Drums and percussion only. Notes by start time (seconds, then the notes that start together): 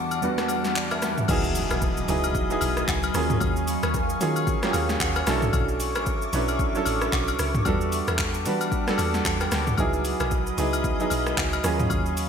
0.11 high agogo, shaker
0.22 shaker
0.38 cross-stick, snare, shaker
0.48 high agogo, shaker
0.65 snare, shaker
0.76 clap, shaker
0.91 cross-stick, high agogo, shaker
1.02 cross-stick, snare, shaker
1.18 mid tom, shaker
1.28 kick, crash, high agogo, shaker
1.44 shaker
1.55 open hi-hat, shaker
1.71 cross-stick, high agogo, shaker
1.82 kick, shaker
1.97 shaker
2.08 open hi-hat, shaker
2.24 high agogo, shaker
2.35 kick, shaker
2.50 shaker
2.61 open hi-hat, high agogo, shaker
2.77 cross-stick, shaker
2.88 kick, clap, low woodblock, shaker
3.03 high agogo, shaker
3.14 cross-stick, open hi-hat, shaker
3.30 mid tom, shaker
3.40 kick, high agogo, shaker
3.56 shaker
3.68 open hi-hat, shaker
3.83 cross-stick, high agogo, shaker
3.94 kick, shaker
4.10 shaker
4.21 open hi-hat, shaker
4.36 high agogo, shaker
4.47 kick, shaker
4.63 cross-stick, snare, shaker
4.73 open hi-hat, high agogo, shaker
4.89 snare, shaker
5.00 kick, clap, low woodblock, shaker
5.16 cross-stick, high agogo, shaker
5.27 cross-stick, snare, open hi-hat, shaker
5.42 mid tom, shaker
5.53 kick, high agogo, shaker
5.69 shaker
5.80 open hi-hat, shaker
5.95 cross-stick, high agogo, shaker
6.06 kick, shaker
6.22 shaker
6.33 open hi-hat, shaker
6.48 high agogo, shaker
6.59 kick, shaker
6.75 shaker
6.85 open hi-hat, high agogo, shaker
7.02 cross-stick, shaker
7.13 kick, clap, low woodblock, shaker
7.28 high agogo, shaker
7.39 cross-stick, open hi-hat, shaker
7.55 mid tom, shaker
7.65 kick, high agogo, shaker
7.81 shaker
7.92 open hi-hat, shaker
8.08 cross-stick, high agogo, shaker
8.19 kick, clap, shaker
8.34 shaker
8.46 open hi-hat, shaker
8.61 high agogo, shaker
8.72 kick, shaker
8.88 cross-stick, snare, shaker
8.98 open hi-hat, high agogo, shaker
9.14 snare, shaker
9.25 kick, clap, low woodblock, shaker
9.40 cross-stick, high agogo, shaker
9.52 cross-stick, snare, open hi-hat, shaker
9.67 mid tom, shaker
9.78 kick, high agogo, shaker
9.93 shaker
10.05 open hi-hat, shaker
10.20 cross-stick, high agogo, shaker
10.31 kick, shaker
10.47 shaker
10.58 open hi-hat, shaker
10.73 high agogo, shaker
10.84 kick, shaker
11.00 shaker
11.10 open hi-hat, high agogo, shaker
11.27 cross-stick, shaker
11.38 kick, clap, low woodblock, shaker
11.53 high agogo, shaker
11.64 cross-stick, open hi-hat, shaker
11.80 mid tom, shaker
11.90 kick, high agogo, shaker
12.06 shaker
12.17 open hi-hat, shaker